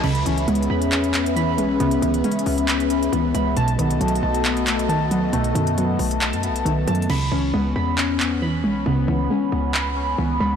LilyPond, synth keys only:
\new Staff \with { instrumentName = "Synth keys" } { \time 4/4 \key cis \minor \tempo 4 = 136 b''8 cis'8 b8 b''8 cis'8 b8 b''8 cis'8 | b4 cis'8 b8 b''8 cis'8 b8 b''8 | a''8 b8 a8 a''8 b8 a8 a''8 b8 | a4 b8 a8 a''8 b8 a8 a''8 |
b''8 cis'8 b8 b''8 cis'8 b8 b''8 cis'8 | b4 cis'8 b8 b''8 cis'8 b8 b''8 | }